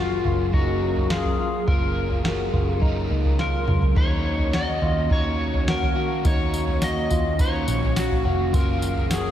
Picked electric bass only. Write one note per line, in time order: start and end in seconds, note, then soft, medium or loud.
0.00 0.21 F#1 loud
0.25 0.52 F#1 medium
0.53 1.35 F#1 medium
1.68 2.49 F#1 loud
2.53 3.08 F#1 medium
3.11 3.65 C#2 medium
3.68 3.95 C#2 medium
3.97 4.78 D#2 medium
4.82 5.09 D#2 loud
5.11 5.92 D#2 medium
6.25 7.07 D#2 loud
7.11 7.65 D#2 medium
7.68 8.22 A#1 medium
8.25 8.52 F1 medium
8.54 9.31 F#1 medium